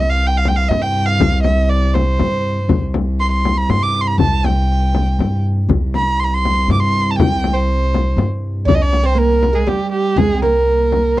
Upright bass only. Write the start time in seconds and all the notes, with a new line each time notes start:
Already playing: C2
0.70 G2
1.20 C2
2.20 G2
2.69 C2
3.69 G2
4.18 C2
5.19 G2
5.69 C2
6.68 G2
7.18 C2
8.17 G2
8.66 C2
10.16 C2